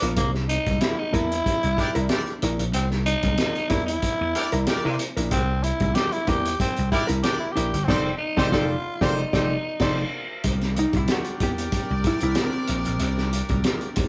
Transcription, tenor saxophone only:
0, 0, Header, 1, 2, 480
1, 0, Start_track
1, 0, Tempo, 642398
1, 132, Time_signature, 4, 2, 24, 8
1, 10523, End_track
2, 0, Start_track
2, 0, Title_t, "Tenor saxophone"
2, 0, Program_c, 0, 66
2, 126, Note_on_c, 0, 58, 96
2, 235, Note_off_c, 0, 58, 0
2, 364, Note_on_c, 0, 63, 102
2, 605, Note_on_c, 0, 64, 104
2, 616, Note_off_c, 0, 63, 0
2, 739, Note_on_c, 0, 63, 92
2, 750, Note_off_c, 0, 64, 0
2, 856, Note_on_c, 0, 64, 118
2, 868, Note_off_c, 0, 63, 0
2, 1814, Note_off_c, 0, 64, 0
2, 2050, Note_on_c, 0, 60, 87
2, 2159, Note_off_c, 0, 60, 0
2, 2286, Note_on_c, 0, 63, 104
2, 2757, Note_on_c, 0, 64, 111
2, 2768, Note_off_c, 0, 63, 0
2, 2876, Note_off_c, 0, 64, 0
2, 2881, Note_on_c, 0, 64, 107
2, 3693, Note_off_c, 0, 64, 0
2, 3975, Note_on_c, 0, 60, 103
2, 4207, Note_on_c, 0, 64, 97
2, 4218, Note_off_c, 0, 60, 0
2, 4446, Note_on_c, 0, 67, 106
2, 4457, Note_off_c, 0, 64, 0
2, 4578, Note_on_c, 0, 64, 102
2, 4589, Note_off_c, 0, 67, 0
2, 4697, Note_on_c, 0, 67, 110
2, 4708, Note_off_c, 0, 64, 0
2, 4931, Note_off_c, 0, 67, 0
2, 4935, Note_on_c, 0, 60, 96
2, 5157, Note_off_c, 0, 60, 0
2, 5167, Note_on_c, 0, 64, 96
2, 5276, Note_off_c, 0, 64, 0
2, 5405, Note_on_c, 0, 67, 102
2, 5521, Note_off_c, 0, 67, 0
2, 5526, Note_on_c, 0, 64, 90
2, 5621, Note_on_c, 0, 67, 106
2, 5632, Note_off_c, 0, 64, 0
2, 5864, Note_on_c, 0, 60, 88
2, 5875, Note_off_c, 0, 67, 0
2, 6106, Note_off_c, 0, 60, 0
2, 6111, Note_on_c, 0, 63, 87
2, 6348, Note_on_c, 0, 65, 102
2, 6359, Note_off_c, 0, 63, 0
2, 6836, Note_on_c, 0, 63, 88
2, 6847, Note_off_c, 0, 65, 0
2, 7564, Note_off_c, 0, 63, 0
2, 10523, End_track
0, 0, End_of_file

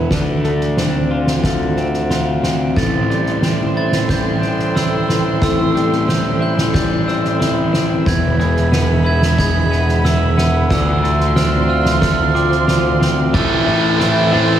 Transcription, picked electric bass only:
0, 0, Header, 1, 2, 480
1, 0, Start_track
1, 0, Key_signature, 0, "minor"
1, 0, Tempo, 661521
1, 76, Time_signature, 4, 2, 24, 8
1, 10590, End_track
2, 0, Start_track
2, 0, Title_t, "Picked electric bass"
2, 0, Program_c, 0, 34
2, 77, Note_on_c, 0, 38, 58
2, 1976, Note_off_c, 0, 38, 0
2, 2005, Note_on_c, 0, 33, 57
2, 3899, Note_off_c, 0, 33, 0
2, 3932, Note_on_c, 0, 33, 66
2, 5821, Note_off_c, 0, 33, 0
2, 5853, Note_on_c, 0, 28, 68
2, 7740, Note_off_c, 0, 28, 0
2, 7768, Note_on_c, 0, 38, 68
2, 9680, Note_off_c, 0, 38, 0
2, 9680, Note_on_c, 0, 33, 78
2, 9913, Note_off_c, 0, 33, 0
2, 9921, Note_on_c, 0, 33, 72
2, 10153, Note_off_c, 0, 33, 0
2, 10162, Note_on_c, 0, 33, 70
2, 10393, Note_off_c, 0, 33, 0
2, 10406, Note_on_c, 0, 33, 77
2, 10590, Note_off_c, 0, 33, 0
2, 10590, End_track
0, 0, End_of_file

